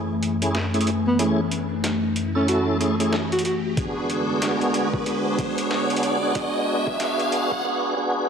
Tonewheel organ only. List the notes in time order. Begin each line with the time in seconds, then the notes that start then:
0.42 A3 C#4 E4 G#4
0.74 A3 C#4 E4 G#4
1.19 A3 C#4 E4 G#4
2.35 A3 C#4 E4 A4
2.80 A3 C#4 E4 G#4
3.00 A3 C#4 E4 G#4
3.77 B3 D4 F#4 G#4
4.93 B3 D4 F#4 G#4
5.06 B3 D4 F#4 G#4
6.23 B3 D4 F#4 G#4
6.35 B3 D4 F#4 G#4
7.00 B3 D4 F#4 G#4
7.64 B3 D4 F#4 G#4
7.97 B3 D4 F#4 G#4